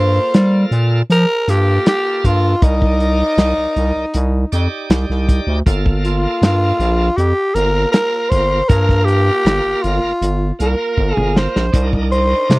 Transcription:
Already playing: G2 A#3 F4 A4 C5
0.34 G3, snare, closed hi-hat
0.71 A#2, closed hi-hat
1.10 F3 A#4, closed hi-hat
1.47 G2 A#3 F4 G4 A4, closed hi-hat
1.86 G4, snare, closed hi-hat
2.24 G2 F4, kick, closed hi-hat
2.62 C2 D#4 A#4 D5, kick, closed hi-hat
2.82 kick
3.00 closed hi-hat
3.38 C2, snare, closed hi-hat
3.58 C2
3.76 C2, closed hi-hat
3.96 C2
4.14 C2, closed hi-hat
4.52 F2 D#4 G4 D5, closed hi-hat
4.90 C2, snare, closed hi-hat
5.10 C2, snare
5.29 kick, closed hi-hat
5.47 D2
5.66 G1 A#3 F4 A4, kick, closed hi-hat
5.86 kick
6.05 F4, closed hi-hat
6.42 G2, snare, closed hi-hat
6.80 A#1, closed hi-hat
7.17 F2 G4, closed hi-hat
7.55 G1 A#3 F4 A#4, closed hi-hat
7.92 A#4, snare, closed hi-hat
8.30 G1 C5, kick, closed hi-hat
8.68 G2 A#3 F4 A#4, kick, closed hi-hat
8.89 kick, snare
9.05 G4, closed hi-hat
9.45 G1, snare, closed hi-hat
9.66 G1
9.83 G1 F4, closed hi-hat
10.04 G1
10.22 G1, closed hi-hat
10.59 C2 A#3 F4 A#4, closed hi-hat
10.97 G1, kick
11.15 G1 G#4, mid tom
11.36 C5, snare
11.56 A#1, snare
11.72 C2 D4 D#4 A#4, kick, closed hi-hat
11.93 kick
12.12 C5, closed hi-hat
12.50 C3, snare, closed hi-hat

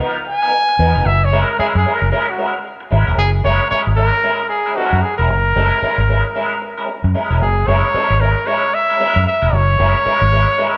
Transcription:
0.00 F3 B3 D#4 A#4
0.26 G#5, muted clean electric guitar stroke
0.42 F3 B3 D#4 A#4
0.53 muted clean electric guitar stroke
0.69 muted clean electric guitar stroke
0.79 E2 F3 B3 D#4 A#4
0.95 F1 F3 B3 D#4 A#4
1.06 F#1 E5
1.24 C#5
1.32 G#3 C#4 E4 A#4
1.42 A#4
1.59 G#3 C#4 E4 G#4 A#4, muted fingered electric bass stroke
1.75 F#2 G#4, muted clean electric guitar stroke
1.85 G#3 C#4 E4 A#4
1.94 A#4
2.01 F#1, muted clean electric guitar stroke
2.12 G#3 C#4 E4 A#4
2.27 F#4, muted clean electric guitar stroke
2.38 G#3 C#4 E4 A#4
2.54 muted clean electric guitar stroke
2.64 muted clean electric guitar stroke
2.80 muted clean electric guitar stroke
2.91 G#1 G#3 C#4 E4 A#4
3.07 E1 G#3 C#4 E4 A#4
3.18 F#1 G#4
3.44 F#1 G#3 C#4 E4 A#4 C#5
3.70 G#3 C#4 E4 A#4 C#5, muted fingered electric bass stroke
3.87 G#1, muted clean electric guitar stroke
3.96 G#3 C#4 E4 A#4
4.12 muted clean electric guitar stroke
4.23 G#3 C#4 E4 A#4
4.49 G#4, muted clean electric guitar stroke
4.66 G#3 C#4 E4 A#4
4.76 G#3 C#4 E4 F#4 A#4
4.93 F#2
5.02 G#4, muted clean electric guitar stroke
5.18 E1 G#3 C#4 E4 A#4
5.30 F#1
5.56 F#1 G#3 C#4 E4 A#4
5.82 G#3 C#4 E4 A#4, muted fingered electric bass stroke
5.98 G#1, muted clean electric guitar stroke
6.09 G#3 C#4 E4 A#4
6.25 muted clean electric guitar stroke
6.35 G#3 C#4 E4 A#4
6.62 muted clean electric guitar stroke
6.78 G#3 C#4 E4 A#4
6.89 muted clean electric guitar stroke
7.04 F#2, muted clean electric guitar stroke
7.14 G#3 C#4 E4 A#4
7.30 E1 G#3 C#4 E4 A#4
7.41 F#1 G#4
7.67 F#1 G#3 C#4 E4 A#4 C#5
7.94 G#3 C#4 E4 A#4, muted fingered electric bass stroke
8.10 G#1, muted clean electric guitar stroke
8.20 G#3 C#4 E4 A#4
8.36 muted clean electric guitar stroke
8.46 G#3 C#4 E4 A#4 C#5
8.73 E5, muted clean electric guitar stroke
8.89 G#3 C#4 E4 A#4
9.00 G#3 C#4 E4 A#4
9.16 F#2
9.27 E5, muted clean electric guitar stroke
9.42 E1 G#3 C#4 E4 A#4
9.53 F#1 C#5
9.79 F#1 G#3 C#4 E4 A#4
10.05 G#3 C#4 E4 A#4, muted fingered electric bass stroke
10.22 G#1, muted clean electric guitar stroke
10.32 G#3 C#4 E4 A#4
10.48 muted clean electric guitar stroke
10.58 G#3 C#4 E4 A#4

